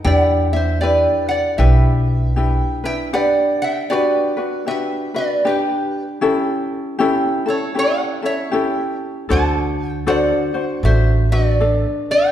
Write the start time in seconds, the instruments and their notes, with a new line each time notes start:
0.04 upright bass E2, ukulele D4 E4 G4 B4, resonator guitar played with a steel bar D5 G5
0.17 resonator guitar played with a steel bar F#5
0.53 ukulele D4 E4, resonator guitar played with a steel bar C5 E5
0.81 ukulele D4 E4 G4 B4, resonator guitar played with a steel bar B4 D5
1.29 resonator guitar played with a steel bar D5 F#5
1.58 upright bass B1, ukulele D4 E4 G4 B4, resonator guitar played with a steel bar B4 E5
2.36 ukulele D4 E4 G4 B4
2.84 ukulele D4 E4 B4, resonator guitar played with a steel bar E5 G5
3.13 ukulele D4 G4 B4, resonator guitar played with a steel bar D5 F#5
3.62 resonator guitar played with a steel bar E5 G5
3.90 ukulele D4 F#4 G4 B4, resonator guitar played with a steel bar B4 D5
4.37 ukulele D4 F#4 B4
4.66 ukulele D4 F#4 G4 B4, resonator guitar played with a steel bar E5
4.71 resonator guitar played with a steel bar B4
5.14 ukulele D4 F#4 B4, resonator guitar played with a steel bar B4 D5
5.45 ukulele D4 G4 B4, resonator guitar played with a steel bar B4
5.49 resonator guitar played with a steel bar G4
6.21 ukulele C#4 E4 G4 A4
6.99 ukulele C#4 E4 G4 A4
7.46 ukulele C#4 E4 A4, resonator guitar played with a steel bar A4
7.50 resonator guitar played with a steel bar C#5
7.75 ukulele C#4 E4 G4 A4
7.79 resonator guitar played with a steel bar C#5 F#5
8.22 ukulele C#4 E4 A4, resonator guitar played with a steel bar C#5 E5
8.51 ukulele C#4 E4 G4 A4
9.29 upright bass D2, ukulele D4 F#4 A4 C5, resonator guitar played with a steel bar F#5 A5
9.88 resonator guitar played with a steel bar G5
10.07 ukulele D4 F#4 A4 C5, resonator guitar played with a steel bar D5 F#5
10.54 ukulele D4 F#4 C5
10.83 upright bass A1, ukulele D4 F#4 A4 C5, resonator guitar played with a steel bar C5 E5
11.32 ukulele D4 F#4, resonator guitar played with a steel bar B4 D5
11.60 ukulele D4 A4
12.11 resonator guitar played with a steel bar D5 G5